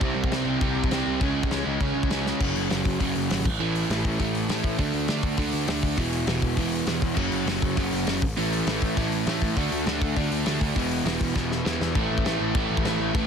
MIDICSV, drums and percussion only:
0, 0, Header, 1, 2, 480
1, 0, Start_track
1, 0, Key_signature, 3, "major"
1, 0, Tempo, 298507
1, 26, Time_signature, 4, 2, 24, 8
1, 21335, End_track
2, 0, Start_track
2, 0, Title_t, "Drums"
2, 19, Note_on_c, 9, 36, 114
2, 20, Note_on_c, 9, 49, 64
2, 179, Note_off_c, 9, 36, 0
2, 180, Note_off_c, 9, 49, 0
2, 381, Note_on_c, 9, 36, 98
2, 506, Note_on_c, 9, 49, 67
2, 518, Note_on_c, 9, 38, 118
2, 541, Note_off_c, 9, 36, 0
2, 667, Note_off_c, 9, 49, 0
2, 678, Note_off_c, 9, 38, 0
2, 985, Note_on_c, 9, 36, 108
2, 988, Note_on_c, 9, 49, 65
2, 1146, Note_off_c, 9, 36, 0
2, 1149, Note_off_c, 9, 49, 0
2, 1345, Note_on_c, 9, 36, 92
2, 1465, Note_on_c, 9, 49, 75
2, 1476, Note_on_c, 9, 38, 122
2, 1506, Note_off_c, 9, 36, 0
2, 1625, Note_off_c, 9, 49, 0
2, 1637, Note_off_c, 9, 38, 0
2, 1945, Note_on_c, 9, 36, 108
2, 1950, Note_on_c, 9, 49, 63
2, 2106, Note_off_c, 9, 36, 0
2, 2111, Note_off_c, 9, 49, 0
2, 2305, Note_on_c, 9, 36, 101
2, 2423, Note_on_c, 9, 49, 59
2, 2434, Note_on_c, 9, 38, 100
2, 2466, Note_off_c, 9, 36, 0
2, 2584, Note_off_c, 9, 49, 0
2, 2595, Note_off_c, 9, 38, 0
2, 2899, Note_on_c, 9, 49, 57
2, 2904, Note_on_c, 9, 36, 109
2, 3060, Note_off_c, 9, 49, 0
2, 3065, Note_off_c, 9, 36, 0
2, 3266, Note_on_c, 9, 36, 95
2, 3382, Note_on_c, 9, 49, 67
2, 3394, Note_on_c, 9, 38, 127
2, 3426, Note_off_c, 9, 36, 0
2, 3543, Note_off_c, 9, 49, 0
2, 3554, Note_off_c, 9, 38, 0
2, 3641, Note_on_c, 9, 38, 63
2, 3802, Note_off_c, 9, 38, 0
2, 3865, Note_on_c, 9, 57, 107
2, 3867, Note_on_c, 9, 36, 97
2, 4026, Note_off_c, 9, 57, 0
2, 4028, Note_off_c, 9, 36, 0
2, 4111, Note_on_c, 9, 46, 58
2, 4271, Note_off_c, 9, 46, 0
2, 4349, Note_on_c, 9, 46, 70
2, 4360, Note_on_c, 9, 38, 92
2, 4510, Note_off_c, 9, 46, 0
2, 4521, Note_off_c, 9, 38, 0
2, 4589, Note_on_c, 9, 36, 91
2, 4589, Note_on_c, 9, 46, 73
2, 4750, Note_off_c, 9, 36, 0
2, 4750, Note_off_c, 9, 46, 0
2, 4830, Note_on_c, 9, 36, 89
2, 4832, Note_on_c, 9, 46, 81
2, 4991, Note_off_c, 9, 36, 0
2, 4993, Note_off_c, 9, 46, 0
2, 5069, Note_on_c, 9, 46, 59
2, 5230, Note_off_c, 9, 46, 0
2, 5316, Note_on_c, 9, 46, 89
2, 5327, Note_on_c, 9, 38, 116
2, 5477, Note_off_c, 9, 46, 0
2, 5488, Note_off_c, 9, 38, 0
2, 5554, Note_on_c, 9, 36, 112
2, 5555, Note_on_c, 9, 49, 101
2, 5715, Note_off_c, 9, 36, 0
2, 5716, Note_off_c, 9, 49, 0
2, 6035, Note_on_c, 9, 46, 53
2, 6196, Note_off_c, 9, 46, 0
2, 6278, Note_on_c, 9, 46, 63
2, 6290, Note_on_c, 9, 38, 98
2, 6439, Note_off_c, 9, 46, 0
2, 6451, Note_off_c, 9, 38, 0
2, 6509, Note_on_c, 9, 46, 57
2, 6510, Note_on_c, 9, 36, 87
2, 6670, Note_off_c, 9, 46, 0
2, 6671, Note_off_c, 9, 36, 0
2, 6747, Note_on_c, 9, 46, 73
2, 6749, Note_on_c, 9, 36, 84
2, 6908, Note_off_c, 9, 46, 0
2, 6910, Note_off_c, 9, 36, 0
2, 6991, Note_on_c, 9, 46, 54
2, 7152, Note_off_c, 9, 46, 0
2, 7227, Note_on_c, 9, 46, 82
2, 7238, Note_on_c, 9, 38, 120
2, 7388, Note_off_c, 9, 46, 0
2, 7399, Note_off_c, 9, 38, 0
2, 7456, Note_on_c, 9, 46, 54
2, 7461, Note_on_c, 9, 36, 88
2, 7617, Note_off_c, 9, 46, 0
2, 7622, Note_off_c, 9, 36, 0
2, 7694, Note_on_c, 9, 46, 70
2, 7701, Note_on_c, 9, 36, 90
2, 7855, Note_off_c, 9, 46, 0
2, 7862, Note_off_c, 9, 36, 0
2, 7935, Note_on_c, 9, 46, 53
2, 8096, Note_off_c, 9, 46, 0
2, 8168, Note_on_c, 9, 46, 71
2, 8179, Note_on_c, 9, 38, 112
2, 8329, Note_off_c, 9, 46, 0
2, 8340, Note_off_c, 9, 38, 0
2, 8406, Note_on_c, 9, 46, 63
2, 8413, Note_on_c, 9, 36, 98
2, 8567, Note_off_c, 9, 46, 0
2, 8573, Note_off_c, 9, 36, 0
2, 8640, Note_on_c, 9, 46, 76
2, 8649, Note_on_c, 9, 36, 94
2, 8800, Note_off_c, 9, 46, 0
2, 8810, Note_off_c, 9, 36, 0
2, 8888, Note_on_c, 9, 46, 63
2, 9049, Note_off_c, 9, 46, 0
2, 9132, Note_on_c, 9, 46, 99
2, 9143, Note_on_c, 9, 38, 127
2, 9292, Note_off_c, 9, 46, 0
2, 9304, Note_off_c, 9, 38, 0
2, 9373, Note_on_c, 9, 36, 84
2, 9381, Note_on_c, 9, 46, 60
2, 9534, Note_off_c, 9, 36, 0
2, 9542, Note_off_c, 9, 46, 0
2, 9611, Note_on_c, 9, 36, 83
2, 9611, Note_on_c, 9, 46, 80
2, 9772, Note_off_c, 9, 36, 0
2, 9772, Note_off_c, 9, 46, 0
2, 9854, Note_on_c, 9, 46, 63
2, 10014, Note_off_c, 9, 46, 0
2, 10084, Note_on_c, 9, 46, 74
2, 10096, Note_on_c, 9, 38, 114
2, 10245, Note_off_c, 9, 46, 0
2, 10256, Note_off_c, 9, 38, 0
2, 10328, Note_on_c, 9, 36, 94
2, 10328, Note_on_c, 9, 46, 61
2, 10489, Note_off_c, 9, 36, 0
2, 10489, Note_off_c, 9, 46, 0
2, 10563, Note_on_c, 9, 46, 81
2, 10566, Note_on_c, 9, 36, 83
2, 10724, Note_off_c, 9, 46, 0
2, 10727, Note_off_c, 9, 36, 0
2, 10802, Note_on_c, 9, 46, 55
2, 10963, Note_off_c, 9, 46, 0
2, 11044, Note_on_c, 9, 46, 82
2, 11055, Note_on_c, 9, 38, 127
2, 11205, Note_off_c, 9, 46, 0
2, 11216, Note_off_c, 9, 38, 0
2, 11287, Note_on_c, 9, 46, 61
2, 11289, Note_on_c, 9, 36, 88
2, 11448, Note_off_c, 9, 46, 0
2, 11450, Note_off_c, 9, 36, 0
2, 11523, Note_on_c, 9, 57, 96
2, 11529, Note_on_c, 9, 36, 84
2, 11684, Note_off_c, 9, 57, 0
2, 11690, Note_off_c, 9, 36, 0
2, 11767, Note_on_c, 9, 46, 57
2, 11927, Note_off_c, 9, 46, 0
2, 12016, Note_on_c, 9, 46, 77
2, 12028, Note_on_c, 9, 38, 101
2, 12177, Note_off_c, 9, 46, 0
2, 12188, Note_off_c, 9, 38, 0
2, 12259, Note_on_c, 9, 36, 93
2, 12259, Note_on_c, 9, 46, 63
2, 12420, Note_off_c, 9, 36, 0
2, 12420, Note_off_c, 9, 46, 0
2, 12495, Note_on_c, 9, 46, 83
2, 12499, Note_on_c, 9, 36, 93
2, 12656, Note_off_c, 9, 46, 0
2, 12659, Note_off_c, 9, 36, 0
2, 12745, Note_on_c, 9, 46, 59
2, 12906, Note_off_c, 9, 46, 0
2, 12977, Note_on_c, 9, 46, 101
2, 12988, Note_on_c, 9, 38, 123
2, 13138, Note_off_c, 9, 46, 0
2, 13149, Note_off_c, 9, 38, 0
2, 13214, Note_on_c, 9, 46, 69
2, 13221, Note_on_c, 9, 36, 100
2, 13375, Note_off_c, 9, 46, 0
2, 13382, Note_off_c, 9, 36, 0
2, 13461, Note_on_c, 9, 46, 76
2, 13622, Note_off_c, 9, 46, 0
2, 13710, Note_on_c, 9, 46, 55
2, 13871, Note_off_c, 9, 46, 0
2, 13942, Note_on_c, 9, 46, 81
2, 13953, Note_on_c, 9, 38, 107
2, 14102, Note_off_c, 9, 46, 0
2, 14114, Note_off_c, 9, 38, 0
2, 14180, Note_on_c, 9, 46, 72
2, 14183, Note_on_c, 9, 36, 88
2, 14340, Note_off_c, 9, 46, 0
2, 14344, Note_off_c, 9, 36, 0
2, 14424, Note_on_c, 9, 46, 68
2, 14426, Note_on_c, 9, 36, 95
2, 14585, Note_off_c, 9, 46, 0
2, 14587, Note_off_c, 9, 36, 0
2, 14665, Note_on_c, 9, 46, 53
2, 14825, Note_off_c, 9, 46, 0
2, 14903, Note_on_c, 9, 46, 83
2, 14914, Note_on_c, 9, 38, 127
2, 15063, Note_off_c, 9, 46, 0
2, 15075, Note_off_c, 9, 38, 0
2, 15141, Note_on_c, 9, 46, 58
2, 15143, Note_on_c, 9, 36, 81
2, 15302, Note_off_c, 9, 46, 0
2, 15304, Note_off_c, 9, 36, 0
2, 15383, Note_on_c, 9, 46, 72
2, 15384, Note_on_c, 9, 36, 93
2, 15544, Note_off_c, 9, 46, 0
2, 15545, Note_off_c, 9, 36, 0
2, 15630, Note_on_c, 9, 46, 63
2, 15791, Note_off_c, 9, 46, 0
2, 15864, Note_on_c, 9, 46, 68
2, 15875, Note_on_c, 9, 38, 108
2, 16025, Note_off_c, 9, 46, 0
2, 16036, Note_off_c, 9, 38, 0
2, 16105, Note_on_c, 9, 36, 96
2, 16107, Note_on_c, 9, 46, 62
2, 16266, Note_off_c, 9, 36, 0
2, 16268, Note_off_c, 9, 46, 0
2, 16345, Note_on_c, 9, 36, 87
2, 16348, Note_on_c, 9, 46, 70
2, 16506, Note_off_c, 9, 36, 0
2, 16509, Note_off_c, 9, 46, 0
2, 16589, Note_on_c, 9, 46, 61
2, 16750, Note_off_c, 9, 46, 0
2, 16819, Note_on_c, 9, 46, 85
2, 16830, Note_on_c, 9, 38, 127
2, 16980, Note_off_c, 9, 46, 0
2, 16991, Note_off_c, 9, 38, 0
2, 17064, Note_on_c, 9, 36, 91
2, 17065, Note_on_c, 9, 46, 65
2, 17225, Note_off_c, 9, 36, 0
2, 17226, Note_off_c, 9, 46, 0
2, 17303, Note_on_c, 9, 36, 96
2, 17306, Note_on_c, 9, 46, 84
2, 17464, Note_off_c, 9, 36, 0
2, 17467, Note_off_c, 9, 46, 0
2, 17548, Note_on_c, 9, 46, 63
2, 17709, Note_off_c, 9, 46, 0
2, 17789, Note_on_c, 9, 46, 83
2, 17800, Note_on_c, 9, 38, 105
2, 17950, Note_off_c, 9, 46, 0
2, 17961, Note_off_c, 9, 38, 0
2, 18023, Note_on_c, 9, 36, 94
2, 18023, Note_on_c, 9, 46, 69
2, 18183, Note_off_c, 9, 36, 0
2, 18184, Note_off_c, 9, 46, 0
2, 18261, Note_on_c, 9, 36, 95
2, 18271, Note_on_c, 9, 38, 55
2, 18422, Note_off_c, 9, 36, 0
2, 18431, Note_off_c, 9, 38, 0
2, 18518, Note_on_c, 9, 38, 70
2, 18679, Note_off_c, 9, 38, 0
2, 18754, Note_on_c, 9, 38, 108
2, 18915, Note_off_c, 9, 38, 0
2, 18998, Note_on_c, 9, 38, 93
2, 19159, Note_off_c, 9, 38, 0
2, 19217, Note_on_c, 9, 49, 62
2, 19222, Note_on_c, 9, 36, 102
2, 19378, Note_off_c, 9, 49, 0
2, 19383, Note_off_c, 9, 36, 0
2, 19581, Note_on_c, 9, 36, 92
2, 19704, Note_on_c, 9, 49, 58
2, 19716, Note_on_c, 9, 38, 109
2, 19742, Note_off_c, 9, 36, 0
2, 19865, Note_off_c, 9, 49, 0
2, 19876, Note_off_c, 9, 38, 0
2, 20177, Note_on_c, 9, 49, 71
2, 20179, Note_on_c, 9, 36, 118
2, 20338, Note_off_c, 9, 49, 0
2, 20340, Note_off_c, 9, 36, 0
2, 20539, Note_on_c, 9, 36, 101
2, 20663, Note_on_c, 9, 49, 72
2, 20674, Note_on_c, 9, 38, 119
2, 20700, Note_off_c, 9, 36, 0
2, 20823, Note_off_c, 9, 49, 0
2, 20835, Note_off_c, 9, 38, 0
2, 21141, Note_on_c, 9, 36, 115
2, 21146, Note_on_c, 9, 49, 72
2, 21302, Note_off_c, 9, 36, 0
2, 21307, Note_off_c, 9, 49, 0
2, 21335, End_track
0, 0, End_of_file